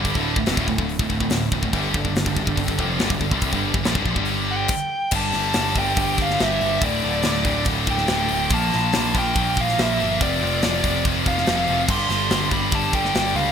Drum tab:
CC |----------------|----------------|------------x---|x---------------|
HH |o---o---o---o---|o---o---o---o---|o---o---o-------|--o-o-o-o-o-o-o-|
SD |----o-------o---|----o-------o---|----o-----------|--o-o------oo---|
BD |oo-o-ooo-ooo--oo|o-oo-oooooo--ooo|oo-o-ooo----o---|o-----o-o-o-----|

CC |----------------|----------------|----------------|x---------------|
HH |o-o-o-o-o-o-o-o-|o-o-o-o-o-o-o-o-|o-o-o-o-o-o-o-o-|--o-o-o-o-o-o-o-|
SD |----o------oo---|--o-o------oo---|----o------oo---|--o-o------oo---|
BD |o-----o-o-o-----|o-----o-o-o-----|o-----o-o-o-----|o-----o-o-o-----|